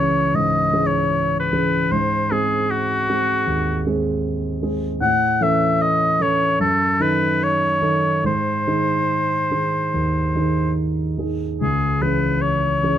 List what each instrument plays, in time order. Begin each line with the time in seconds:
Already playing: grand piano C#2 E3 C#4 G#4, oboe C#5
0.34 grand piano G#2, oboe D#5
0.73 grand piano E3 C#4 G#4
0.87 oboe C#5
1.40 oboe B4
1.53 grand piano E3 C#4 G#4
1.91 grand piano G#2, oboe C5
2.31 grand piano G#3 C4 G#4, oboe G#4
2.70 oboe F#4
3.09 grand piano G#3 C4 G#4
3.47 grand piano D#2
3.86 grand piano G#3 C4 G#4
4.62 grand piano G#3 C4 G#4
5.01 grand piano A2, oboe F#5
5.41 grand piano E3 C#4 A4, oboe E5
5.82 oboe D#5
6.20 grand piano E3 C#4 A4, oboe C#5
6.60 grand piano F#2, oboe A4
7.00 grand piano D#3 D#4 A4, oboe B4
7.44 oboe C#5
7.81 grand piano D#3 D#4 A4
8.24 grand piano G#2, oboe C5
8.67 grand piano D#3 D#4 G#4
9.51 grand piano D#3 D#4 G#4
9.94 grand piano D#2
10.35 grand piano D#3 D#4 G#4
11.18 grand piano D#3 D#4 G#4
11.61 grand piano C#2, oboe G#4
12.01 grand piano E3 C#4 G#4, oboe B4
12.42 oboe C#5
12.83 grand piano E3 C#4 G#4